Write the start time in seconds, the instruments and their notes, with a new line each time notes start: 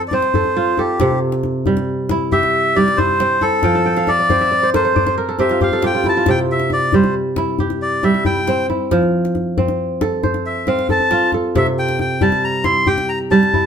Already playing: kora F3 C4 A4 C5
0.00 djembe slap
0.08 melodica D5, djembe tone
0.13 kora C4, melodica C5
0.22 djembe slap
0.34 kora A4, djembe bass
0.44 djembe tone
0.57 kora F4
0.78 melodica G4, kora A4, djembe tone
1.00 kora C3, djembe slap, djembe bass
1.11 djembe tone
1.32 djembe slap
1.43 djembe tone
1.66 kora G3, djembe bass
1.77 djembe slap, djembe tone
2.09 kora E4, djembe slap, djembe tone
2.32 kora G4, melodica E5, djembe bass
2.43 djembe slap, djembe tone
2.66 djembe slap
2.76 kora G3, melodica D5, djembe tone
2.88 djembe slap
2.97 kora E4, melodica C5, djembe bass
3.09 djembe tone
3.20 kora C4, djembe slap
3.41 kora E4, melodica A4, djembe tone
3.63 kora F3 G5, djembe slap, djembe bass
3.75 kora A5, djembe tone
3.86 kora G5
3.97 kora F5, djembe slap
4.07 melodica D5, kora E5, djembe slap, djembe tone
4.19 kora D5, djembe slap
4.30 kora C4 C5, djembe bass
4.41 kora E5, djembe tone
4.52 kora D5
4.63 kora C5
4.74 kora A4 A#4, melodica C5, djembe slap, djembe tone
4.85 kora C5
4.96 kora D5, djembe bass
5.07 kora C5, djembe slap, djembe tone
5.18 kora A#4
5.29 kora A4
5.39 kora C4 G4, melodica E5, djembe tone
5.49 kora F4, djembe slap
5.61 kora G4, melodica F5, djembe slap, djembe bass
5.72 kora A4, djembe tone
5.82 kora F4 G4, melodica G5, djembe slap
5.95 kora F4
6.04 kora E4, djembe slap, djembe tone
6.09 melodica A5
6.17 kora F4
6.26 kora C3, melodica G5, djembe slap, djembe bass
6.51 melodica E5
6.60 djembe slap
6.70 melodica D5, djembe tone
6.92 kora G3, melodica C5, djembe bass
7.04 djembe slap, djembe tone
7.36 kora E4, djembe slap, djembe tone
7.59 kora G4, djembe bass
7.70 djembe slap, djembe tone
7.82 melodica D5
7.93 djembe slap
8.03 kora G3, melodica E5, djembe tone
8.14 djembe slap
8.25 kora E4, melodica G5, djembe bass
8.36 djembe tone
8.47 kora C4, djembe slap
8.70 kora E4, djembe tone
8.91 kora F3, djembe slap, djembe bass
9.03 djembe tone
9.25 djembe slap
9.35 djembe tone
9.57 kora C4, djembe bass
9.68 djembe slap, djembe tone
10.01 kora A4, djembe slap, djembe tone
10.23 kora C5, djembe bass
10.34 djembe slap, djembe tone
10.46 melodica E5
10.57 djembe slap
10.67 kora C4, melodica F5, djembe tone
10.79 djembe slap
10.89 kora A4, melodica A5, djembe bass
11.00 djembe tone
11.11 kora F4, djembe slap
11.32 kora A4, djembe tone
11.55 kora C3, melodica E5, djembe slap, djembe bass
11.66 djembe tone
11.79 melodica G5
11.89 djembe slap
11.99 melodica G5, djembe tone
12.21 kora G3, melodica A5, djembe bass
12.32 djembe slap, djembe tone
12.44 melodica A#5
12.64 kora E4, melodica C6, djembe slap, djembe tone
12.86 kora G4, melodica G5, djembe bass
12.98 djembe slap, djembe tone
13.09 melodica A#5
13.20 djembe slap
13.31 kora G3, melodica A5, djembe tone
13.43 djembe slap
13.54 kora E4, djembe bass